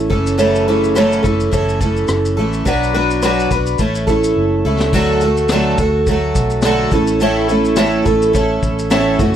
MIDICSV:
0, 0, Header, 1, 4, 480
1, 0, Start_track
1, 0, Key_signature, 2, "major"
1, 0, Tempo, 568182
1, 327, Time_signature, 4, 2, 24, 8
1, 7906, End_track
2, 0, Start_track
2, 0, Title_t, "Twelve-string acoustic guitar"
2, 0, Program_c, 0, 25
2, 0, Note_on_c, 0, 57, 46
2, 0, Note_on_c, 0, 61, 50
2, 0, Note_on_c, 0, 64, 49
2, 81, Note_on_c, 0, 69, 63
2, 89, Note_off_c, 0, 64, 0
2, 92, Note_off_c, 0, 61, 0
2, 92, Note_on_c, 0, 61, 54
2, 98, Note_off_c, 0, 57, 0
2, 98, Note_on_c, 0, 57, 56
2, 108, Note_on_c, 0, 52, 50
2, 318, Note_on_c, 0, 42, 77
2, 319, Note_off_c, 0, 52, 0
2, 321, Note_off_c, 0, 61, 0
2, 322, Note_off_c, 0, 57, 0
2, 324, Note_off_c, 0, 69, 0
2, 324, Note_on_c, 0, 49, 82
2, 329, Note_on_c, 0, 52, 92
2, 331, Note_on_c, 0, 61, 96
2, 332, Note_on_c, 0, 57, 93
2, 337, Note_on_c, 0, 69, 87
2, 563, Note_off_c, 0, 42, 0
2, 563, Note_off_c, 0, 69, 0
2, 565, Note_off_c, 0, 49, 0
2, 565, Note_off_c, 0, 61, 0
2, 567, Note_off_c, 0, 57, 0
2, 568, Note_off_c, 0, 52, 0
2, 573, Note_on_c, 0, 69, 73
2, 575, Note_on_c, 0, 61, 72
2, 577, Note_on_c, 0, 57, 68
2, 580, Note_on_c, 0, 52, 69
2, 586, Note_on_c, 0, 49, 76
2, 588, Note_on_c, 0, 42, 56
2, 794, Note_off_c, 0, 42, 0
2, 802, Note_off_c, 0, 49, 0
2, 804, Note_on_c, 0, 42, 77
2, 805, Note_off_c, 0, 52, 0
2, 810, Note_off_c, 0, 69, 0
2, 811, Note_off_c, 0, 61, 0
2, 812, Note_off_c, 0, 57, 0
2, 812, Note_on_c, 0, 49, 79
2, 815, Note_on_c, 0, 52, 78
2, 823, Note_on_c, 0, 57, 95
2, 824, Note_on_c, 0, 61, 103
2, 826, Note_on_c, 0, 69, 89
2, 1027, Note_off_c, 0, 69, 0
2, 1037, Note_on_c, 0, 69, 62
2, 1040, Note_off_c, 0, 61, 0
2, 1046, Note_off_c, 0, 42, 0
2, 1050, Note_off_c, 0, 49, 0
2, 1050, Note_on_c, 0, 61, 57
2, 1051, Note_off_c, 0, 52, 0
2, 1051, Note_off_c, 0, 57, 0
2, 1061, Note_on_c, 0, 57, 51
2, 1069, Note_on_c, 0, 52, 53
2, 1269, Note_off_c, 0, 52, 0
2, 1279, Note_on_c, 0, 52, 66
2, 1280, Note_off_c, 0, 57, 0
2, 1282, Note_off_c, 0, 69, 0
2, 1287, Note_off_c, 0, 61, 0
2, 1290, Note_on_c, 0, 57, 68
2, 1297, Note_on_c, 0, 61, 68
2, 1300, Note_on_c, 0, 69, 82
2, 1515, Note_off_c, 0, 69, 0
2, 1523, Note_off_c, 0, 52, 0
2, 1525, Note_on_c, 0, 69, 57
2, 1529, Note_off_c, 0, 57, 0
2, 1531, Note_off_c, 0, 61, 0
2, 1541, Note_on_c, 0, 61, 57
2, 1543, Note_on_c, 0, 57, 47
2, 1555, Note_on_c, 0, 52, 44
2, 1991, Note_off_c, 0, 69, 0
2, 2001, Note_on_c, 0, 69, 65
2, 2005, Note_off_c, 0, 61, 0
2, 2011, Note_off_c, 0, 57, 0
2, 2015, Note_on_c, 0, 61, 57
2, 2021, Note_on_c, 0, 57, 57
2, 2022, Note_off_c, 0, 52, 0
2, 2031, Note_on_c, 0, 52, 57
2, 2241, Note_on_c, 0, 47, 87
2, 2245, Note_off_c, 0, 52, 0
2, 2245, Note_off_c, 0, 69, 0
2, 2248, Note_on_c, 0, 54, 89
2, 2252, Note_off_c, 0, 61, 0
2, 2254, Note_off_c, 0, 57, 0
2, 2257, Note_on_c, 0, 62, 92
2, 2261, Note_on_c, 0, 66, 93
2, 2265, Note_on_c, 0, 71, 86
2, 2477, Note_off_c, 0, 66, 0
2, 2477, Note_off_c, 0, 71, 0
2, 2485, Note_off_c, 0, 47, 0
2, 2485, Note_off_c, 0, 62, 0
2, 2487, Note_on_c, 0, 66, 79
2, 2488, Note_off_c, 0, 54, 0
2, 2488, Note_on_c, 0, 71, 82
2, 2495, Note_on_c, 0, 62, 68
2, 2499, Note_on_c, 0, 47, 63
2, 2502, Note_on_c, 0, 54, 69
2, 2714, Note_off_c, 0, 47, 0
2, 2721, Note_off_c, 0, 54, 0
2, 2724, Note_on_c, 0, 47, 87
2, 2728, Note_off_c, 0, 66, 0
2, 2728, Note_off_c, 0, 71, 0
2, 2731, Note_on_c, 0, 54, 99
2, 2732, Note_off_c, 0, 62, 0
2, 2741, Note_on_c, 0, 62, 83
2, 2745, Note_on_c, 0, 66, 88
2, 2749, Note_on_c, 0, 71, 93
2, 2957, Note_off_c, 0, 71, 0
2, 2966, Note_off_c, 0, 47, 0
2, 2967, Note_on_c, 0, 71, 66
2, 2970, Note_off_c, 0, 54, 0
2, 2973, Note_off_c, 0, 66, 0
2, 2975, Note_off_c, 0, 62, 0
2, 2983, Note_on_c, 0, 66, 54
2, 2996, Note_on_c, 0, 62, 56
2, 3201, Note_on_c, 0, 57, 69
2, 3208, Note_off_c, 0, 62, 0
2, 3208, Note_off_c, 0, 71, 0
2, 3212, Note_on_c, 0, 61, 66
2, 3214, Note_off_c, 0, 66, 0
2, 3217, Note_on_c, 0, 64, 65
2, 3229, Note_on_c, 0, 69, 72
2, 3428, Note_off_c, 0, 69, 0
2, 3438, Note_on_c, 0, 69, 64
2, 3444, Note_off_c, 0, 64, 0
2, 3445, Note_off_c, 0, 57, 0
2, 3450, Note_off_c, 0, 61, 0
2, 3454, Note_on_c, 0, 64, 51
2, 3463, Note_on_c, 0, 57, 52
2, 3463, Note_on_c, 0, 61, 50
2, 3924, Note_off_c, 0, 69, 0
2, 3928, Note_off_c, 0, 64, 0
2, 3928, Note_on_c, 0, 69, 63
2, 3936, Note_off_c, 0, 61, 0
2, 3938, Note_on_c, 0, 64, 66
2, 3945, Note_on_c, 0, 61, 53
2, 3949, Note_off_c, 0, 57, 0
2, 3952, Note_on_c, 0, 57, 48
2, 4169, Note_off_c, 0, 57, 0
2, 4169, Note_off_c, 0, 69, 0
2, 4171, Note_on_c, 0, 50, 82
2, 4173, Note_on_c, 0, 54, 88
2, 4174, Note_off_c, 0, 64, 0
2, 4175, Note_off_c, 0, 61, 0
2, 4179, Note_on_c, 0, 57, 83
2, 4185, Note_on_c, 0, 66, 89
2, 4185, Note_on_c, 0, 69, 92
2, 4398, Note_off_c, 0, 69, 0
2, 4408, Note_on_c, 0, 69, 61
2, 4409, Note_off_c, 0, 66, 0
2, 4410, Note_off_c, 0, 50, 0
2, 4411, Note_off_c, 0, 54, 0
2, 4414, Note_off_c, 0, 57, 0
2, 4419, Note_on_c, 0, 66, 55
2, 4437, Note_on_c, 0, 57, 56
2, 4649, Note_off_c, 0, 69, 0
2, 4654, Note_off_c, 0, 66, 0
2, 4656, Note_off_c, 0, 57, 0
2, 4659, Note_on_c, 0, 50, 88
2, 4662, Note_on_c, 0, 54, 96
2, 4666, Note_on_c, 0, 57, 94
2, 4674, Note_on_c, 0, 66, 86
2, 4676, Note_on_c, 0, 69, 87
2, 4882, Note_off_c, 0, 69, 0
2, 4892, Note_on_c, 0, 69, 62
2, 4894, Note_off_c, 0, 50, 0
2, 4896, Note_off_c, 0, 54, 0
2, 4897, Note_off_c, 0, 66, 0
2, 4898, Note_off_c, 0, 57, 0
2, 4907, Note_on_c, 0, 66, 54
2, 4921, Note_on_c, 0, 57, 51
2, 5131, Note_off_c, 0, 69, 0
2, 5134, Note_off_c, 0, 57, 0
2, 5137, Note_on_c, 0, 54, 68
2, 5138, Note_off_c, 0, 66, 0
2, 5144, Note_on_c, 0, 57, 69
2, 5149, Note_on_c, 0, 66, 71
2, 5163, Note_on_c, 0, 69, 83
2, 5605, Note_off_c, 0, 54, 0
2, 5610, Note_off_c, 0, 66, 0
2, 5613, Note_on_c, 0, 50, 83
2, 5615, Note_on_c, 0, 54, 84
2, 5619, Note_off_c, 0, 57, 0
2, 5620, Note_on_c, 0, 66, 97
2, 5623, Note_on_c, 0, 57, 92
2, 5626, Note_off_c, 0, 69, 0
2, 5630, Note_on_c, 0, 69, 90
2, 5836, Note_off_c, 0, 69, 0
2, 5846, Note_on_c, 0, 69, 63
2, 5851, Note_off_c, 0, 50, 0
2, 5852, Note_off_c, 0, 54, 0
2, 5853, Note_off_c, 0, 66, 0
2, 5855, Note_off_c, 0, 57, 0
2, 5857, Note_on_c, 0, 64, 58
2, 5859, Note_on_c, 0, 61, 60
2, 5873, Note_on_c, 0, 57, 50
2, 6086, Note_off_c, 0, 57, 0
2, 6088, Note_off_c, 0, 69, 0
2, 6089, Note_on_c, 0, 45, 86
2, 6090, Note_off_c, 0, 61, 0
2, 6093, Note_off_c, 0, 64, 0
2, 6096, Note_on_c, 0, 57, 89
2, 6097, Note_on_c, 0, 52, 82
2, 6101, Note_on_c, 0, 61, 92
2, 6105, Note_on_c, 0, 64, 108
2, 6106, Note_on_c, 0, 69, 91
2, 6313, Note_off_c, 0, 69, 0
2, 6323, Note_on_c, 0, 69, 62
2, 6328, Note_off_c, 0, 64, 0
2, 6329, Note_off_c, 0, 45, 0
2, 6332, Note_off_c, 0, 61, 0
2, 6333, Note_off_c, 0, 52, 0
2, 6333, Note_off_c, 0, 57, 0
2, 6338, Note_on_c, 0, 64, 60
2, 6342, Note_on_c, 0, 61, 53
2, 6350, Note_on_c, 0, 57, 47
2, 6554, Note_off_c, 0, 57, 0
2, 6556, Note_on_c, 0, 45, 88
2, 6560, Note_on_c, 0, 52, 84
2, 6561, Note_off_c, 0, 61, 0
2, 6564, Note_on_c, 0, 57, 96
2, 6566, Note_off_c, 0, 69, 0
2, 6567, Note_off_c, 0, 64, 0
2, 6572, Note_on_c, 0, 61, 86
2, 6577, Note_on_c, 0, 64, 101
2, 6580, Note_on_c, 0, 69, 93
2, 6793, Note_off_c, 0, 69, 0
2, 6801, Note_off_c, 0, 64, 0
2, 6802, Note_off_c, 0, 45, 0
2, 6803, Note_on_c, 0, 69, 65
2, 6804, Note_off_c, 0, 52, 0
2, 6806, Note_off_c, 0, 57, 0
2, 6808, Note_off_c, 0, 61, 0
2, 6812, Note_on_c, 0, 64, 57
2, 6818, Note_on_c, 0, 61, 53
2, 6829, Note_on_c, 0, 57, 51
2, 7029, Note_off_c, 0, 57, 0
2, 7039, Note_on_c, 0, 57, 68
2, 7042, Note_off_c, 0, 61, 0
2, 7046, Note_off_c, 0, 69, 0
2, 7050, Note_off_c, 0, 64, 0
2, 7052, Note_on_c, 0, 61, 73
2, 7060, Note_on_c, 0, 64, 67
2, 7065, Note_on_c, 0, 69, 75
2, 7521, Note_on_c, 0, 45, 85
2, 7524, Note_off_c, 0, 57, 0
2, 7527, Note_on_c, 0, 52, 97
2, 7527, Note_on_c, 0, 57, 96
2, 7528, Note_off_c, 0, 61, 0
2, 7532, Note_on_c, 0, 61, 88
2, 7533, Note_off_c, 0, 69, 0
2, 7535, Note_off_c, 0, 64, 0
2, 7536, Note_on_c, 0, 69, 96
2, 7538, Note_on_c, 0, 64, 85
2, 7764, Note_off_c, 0, 45, 0
2, 7766, Note_off_c, 0, 61, 0
2, 7767, Note_off_c, 0, 69, 0
2, 7768, Note_off_c, 0, 52, 0
2, 7768, Note_off_c, 0, 57, 0
2, 7770, Note_on_c, 0, 66, 62
2, 7773, Note_off_c, 0, 64, 0
2, 7776, Note_on_c, 0, 61, 59
2, 7785, Note_on_c, 0, 57, 53
2, 7792, Note_on_c, 0, 52, 57
2, 7906, Note_off_c, 0, 52, 0
2, 7906, Note_off_c, 0, 57, 0
2, 7906, Note_off_c, 0, 61, 0
2, 7906, Note_off_c, 0, 66, 0
2, 7906, End_track
3, 0, Start_track
3, 0, Title_t, "Fingered electric bass"
3, 0, Program_c, 1, 33
3, 88, Note_on_c, 1, 30, 84
3, 1014, Note_off_c, 1, 30, 0
3, 1049, Note_on_c, 1, 30, 75
3, 1269, Note_off_c, 1, 30, 0
3, 1292, Note_on_c, 1, 30, 93
3, 1736, Note_off_c, 1, 30, 0
3, 1762, Note_on_c, 1, 30, 71
3, 1986, Note_off_c, 1, 30, 0
3, 2002, Note_on_c, 1, 33, 81
3, 2226, Note_off_c, 1, 33, 0
3, 2248, Note_on_c, 1, 35, 105
3, 2935, Note_off_c, 1, 35, 0
3, 2966, Note_on_c, 1, 35, 95
3, 3188, Note_off_c, 1, 35, 0
3, 3203, Note_on_c, 1, 33, 87
3, 3652, Note_off_c, 1, 33, 0
3, 3686, Note_on_c, 1, 30, 81
3, 3908, Note_off_c, 1, 30, 0
3, 3927, Note_on_c, 1, 37, 88
3, 4149, Note_off_c, 1, 37, 0
3, 4164, Note_on_c, 1, 38, 103
3, 4853, Note_off_c, 1, 38, 0
3, 4888, Note_on_c, 1, 38, 86
3, 5335, Note_off_c, 1, 38, 0
3, 5371, Note_on_c, 1, 35, 82
3, 5816, Note_off_c, 1, 35, 0
3, 5845, Note_on_c, 1, 33, 101
3, 6773, Note_off_c, 1, 33, 0
3, 6811, Note_on_c, 1, 33, 87
3, 7256, Note_off_c, 1, 33, 0
3, 7289, Note_on_c, 1, 33, 80
3, 7735, Note_off_c, 1, 33, 0
3, 7766, Note_on_c, 1, 30, 99
3, 7906, Note_off_c, 1, 30, 0
3, 7906, End_track
4, 0, Start_track
4, 0, Title_t, "Drums"
4, 88, Note_on_c, 9, 36, 91
4, 173, Note_off_c, 9, 36, 0
4, 225, Note_on_c, 9, 82, 53
4, 310, Note_off_c, 9, 82, 0
4, 328, Note_on_c, 9, 82, 62
4, 412, Note_off_c, 9, 82, 0
4, 468, Note_on_c, 9, 82, 43
4, 553, Note_off_c, 9, 82, 0
4, 707, Note_on_c, 9, 82, 51
4, 792, Note_off_c, 9, 82, 0
4, 810, Note_on_c, 9, 82, 58
4, 812, Note_on_c, 9, 37, 104
4, 894, Note_off_c, 9, 82, 0
4, 897, Note_off_c, 9, 37, 0
4, 951, Note_on_c, 9, 82, 53
4, 1035, Note_off_c, 9, 82, 0
4, 1049, Note_on_c, 9, 36, 89
4, 1055, Note_on_c, 9, 82, 50
4, 1134, Note_off_c, 9, 36, 0
4, 1139, Note_off_c, 9, 82, 0
4, 1185, Note_on_c, 9, 82, 44
4, 1269, Note_off_c, 9, 82, 0
4, 1290, Note_on_c, 9, 36, 92
4, 1292, Note_on_c, 9, 82, 76
4, 1375, Note_off_c, 9, 36, 0
4, 1376, Note_off_c, 9, 82, 0
4, 1427, Note_on_c, 9, 82, 51
4, 1511, Note_off_c, 9, 82, 0
4, 1527, Note_on_c, 9, 36, 85
4, 1530, Note_on_c, 9, 82, 48
4, 1611, Note_off_c, 9, 36, 0
4, 1614, Note_off_c, 9, 82, 0
4, 1660, Note_on_c, 9, 82, 44
4, 1744, Note_off_c, 9, 82, 0
4, 1757, Note_on_c, 9, 82, 60
4, 1761, Note_on_c, 9, 37, 104
4, 1841, Note_off_c, 9, 82, 0
4, 1846, Note_off_c, 9, 37, 0
4, 1904, Note_on_c, 9, 82, 50
4, 1988, Note_off_c, 9, 82, 0
4, 2137, Note_on_c, 9, 82, 48
4, 2222, Note_off_c, 9, 82, 0
4, 2247, Note_on_c, 9, 36, 92
4, 2250, Note_on_c, 9, 82, 58
4, 2331, Note_off_c, 9, 36, 0
4, 2335, Note_off_c, 9, 82, 0
4, 2394, Note_on_c, 9, 82, 45
4, 2479, Note_off_c, 9, 82, 0
4, 2624, Note_on_c, 9, 82, 49
4, 2708, Note_off_c, 9, 82, 0
4, 2722, Note_on_c, 9, 82, 67
4, 2725, Note_on_c, 9, 37, 94
4, 2807, Note_off_c, 9, 82, 0
4, 2810, Note_off_c, 9, 37, 0
4, 2870, Note_on_c, 9, 82, 51
4, 2955, Note_off_c, 9, 82, 0
4, 2965, Note_on_c, 9, 36, 97
4, 2966, Note_on_c, 9, 82, 51
4, 3049, Note_off_c, 9, 36, 0
4, 3050, Note_off_c, 9, 82, 0
4, 3096, Note_on_c, 9, 82, 50
4, 3180, Note_off_c, 9, 82, 0
4, 3197, Note_on_c, 9, 82, 70
4, 3203, Note_on_c, 9, 36, 89
4, 3282, Note_off_c, 9, 82, 0
4, 3288, Note_off_c, 9, 36, 0
4, 3338, Note_on_c, 9, 82, 51
4, 3423, Note_off_c, 9, 82, 0
4, 3443, Note_on_c, 9, 36, 89
4, 3445, Note_on_c, 9, 82, 55
4, 3528, Note_off_c, 9, 36, 0
4, 3529, Note_off_c, 9, 82, 0
4, 3580, Note_on_c, 9, 82, 52
4, 3664, Note_off_c, 9, 82, 0
4, 4056, Note_on_c, 9, 38, 89
4, 4140, Note_off_c, 9, 38, 0
4, 4162, Note_on_c, 9, 49, 93
4, 4165, Note_on_c, 9, 36, 98
4, 4246, Note_off_c, 9, 49, 0
4, 4250, Note_off_c, 9, 36, 0
4, 4400, Note_on_c, 9, 82, 46
4, 4484, Note_off_c, 9, 82, 0
4, 4537, Note_on_c, 9, 82, 48
4, 4622, Note_off_c, 9, 82, 0
4, 4634, Note_on_c, 9, 82, 73
4, 4636, Note_on_c, 9, 38, 106
4, 4718, Note_off_c, 9, 82, 0
4, 4721, Note_off_c, 9, 38, 0
4, 4883, Note_on_c, 9, 82, 58
4, 4886, Note_on_c, 9, 36, 103
4, 4968, Note_off_c, 9, 82, 0
4, 4970, Note_off_c, 9, 36, 0
4, 5125, Note_on_c, 9, 82, 69
4, 5127, Note_on_c, 9, 36, 88
4, 5209, Note_off_c, 9, 82, 0
4, 5212, Note_off_c, 9, 36, 0
4, 5367, Note_on_c, 9, 36, 98
4, 5367, Note_on_c, 9, 82, 55
4, 5452, Note_off_c, 9, 36, 0
4, 5452, Note_off_c, 9, 82, 0
4, 5492, Note_on_c, 9, 82, 51
4, 5576, Note_off_c, 9, 82, 0
4, 5591, Note_on_c, 9, 82, 61
4, 5595, Note_on_c, 9, 38, 101
4, 5676, Note_off_c, 9, 82, 0
4, 5680, Note_off_c, 9, 38, 0
4, 5837, Note_on_c, 9, 82, 45
4, 5845, Note_on_c, 9, 36, 100
4, 5922, Note_off_c, 9, 82, 0
4, 5929, Note_off_c, 9, 36, 0
4, 5974, Note_on_c, 9, 82, 55
4, 6058, Note_off_c, 9, 82, 0
4, 6082, Note_on_c, 9, 82, 58
4, 6167, Note_off_c, 9, 82, 0
4, 6328, Note_on_c, 9, 82, 43
4, 6412, Note_off_c, 9, 82, 0
4, 6461, Note_on_c, 9, 82, 50
4, 6545, Note_off_c, 9, 82, 0
4, 6556, Note_on_c, 9, 82, 68
4, 6559, Note_on_c, 9, 38, 103
4, 6641, Note_off_c, 9, 82, 0
4, 6643, Note_off_c, 9, 38, 0
4, 6809, Note_on_c, 9, 36, 104
4, 6809, Note_on_c, 9, 82, 58
4, 6893, Note_off_c, 9, 36, 0
4, 6893, Note_off_c, 9, 82, 0
4, 6945, Note_on_c, 9, 82, 53
4, 7030, Note_off_c, 9, 82, 0
4, 7052, Note_on_c, 9, 36, 105
4, 7052, Note_on_c, 9, 82, 74
4, 7136, Note_off_c, 9, 82, 0
4, 7137, Note_off_c, 9, 36, 0
4, 7288, Note_on_c, 9, 36, 93
4, 7291, Note_on_c, 9, 82, 53
4, 7373, Note_off_c, 9, 36, 0
4, 7375, Note_off_c, 9, 82, 0
4, 7425, Note_on_c, 9, 82, 51
4, 7510, Note_off_c, 9, 82, 0
4, 7523, Note_on_c, 9, 82, 63
4, 7528, Note_on_c, 9, 38, 115
4, 7608, Note_off_c, 9, 82, 0
4, 7612, Note_off_c, 9, 38, 0
4, 7767, Note_on_c, 9, 36, 110
4, 7767, Note_on_c, 9, 82, 49
4, 7851, Note_off_c, 9, 36, 0
4, 7851, Note_off_c, 9, 82, 0
4, 7906, End_track
0, 0, End_of_file